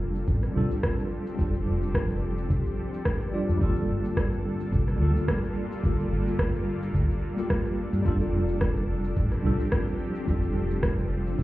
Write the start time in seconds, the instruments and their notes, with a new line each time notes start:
Already playing: fingered electric bass F1, ambient pad F3 C4 D4 G4 A4, tine electric piano G3 D4 F4 A4
0.15 cabasa
0.27 fingered electric bass A1, kick, cabasa
0.43 cross-stick, cabasa
0.52 fingered electric bass C2, tine electric piano G3 D4 F4
0.57 tine electric piano A4
0.71 cabasa
0.83 kick, cross-stick, cabasa
0.99 cabasa
1.27 cabasa
1.35 fingered electric bass F1, tine electric piano G3 D4 F4, kick, cabasa
1.41 tine electric piano A4
1.55 cabasa
1.67 fingered electric bass F1
1.83 cabasa
1.95 kick, cross-stick, cabasa
2.10 cabasa
2.38 cabasa
2.50 fingered electric bass C2, kick, cabasa
2.66 cabasa
2.94 cabasa
3.05 kick, cross-stick, cabasa
3.21 cross-stick, cabasa
3.31 tine electric piano G3 D4 F4 D5
3.49 fingered electric bass F2, cabasa
3.57 fingered electric bass G1, tine electric piano G3 A#3 F4, ambient pad G3 A#3 F4, kick, cabasa
3.63 tine electric piano A4
3.77 cabasa
3.89 fingered electric bass G1
4.05 cabasa
4.17 kick, cross-stick, cabasa
4.33 cabasa
4.60 cabasa
4.73 fingered electric bass C2, kick, cabasa
4.88 cross-stick, cabasa
4.96 fingered electric bass D2, tine electric piano G3 A#3 F4
5.02 tine electric piano A4
5.16 cabasa
5.28 kick, cross-stick, cabasa
5.44 cabasa
5.72 cabasa
5.81 fingered electric bass G1, tine electric piano G3 A#3 F4, kick, cabasa
5.86 tine electric piano A4
6.00 cabasa
6.11 fingered electric bass G1
6.28 cabasa
6.39 kick, cross-stick, cabasa
6.55 cabasa
6.83 cabasa
6.95 fingered electric bass D2, kick, cabasa
7.11 cabasa
7.35 tine electric piano G3 A#3 F4, cabasa
7.40 tine electric piano G4
7.50 kick, cross-stick, cabasa
7.65 cross-stick, cabasa
7.93 fingered electric bass G2, cabasa
8.02 fingered electric bass F1, ambient pad F3 C4 G4, tine electric piano G3 D4 F4, kick, cabasa
8.08 tine electric piano A4
8.21 cabasa
8.33 fingered electric bass F1
8.48 cabasa
8.61 kick, cross-stick, cabasa
8.77 cabasa
9.04 cabasa
9.16 fingered electric bass A1, kick, cabasa
9.32 cross-stick, cabasa
9.41 fingered electric bass C2, tine electric piano G3 D4
9.45 tine electric piano F4 A4
9.60 cabasa
9.72 kick, cross-stick, cabasa
9.87 cabasa
10.15 cabasa
10.25 fingered electric bass F1, tine electric piano G3 D4 F4, ambient pad F4, kick, cabasa
10.30 tine electric piano A4
10.43 cabasa
10.55 fingered electric bass F1
10.71 cabasa
10.83 kick, cross-stick, cabasa
10.98 cabasa
11.26 cabasa
11.39 fingered electric bass C2, kick, cabasa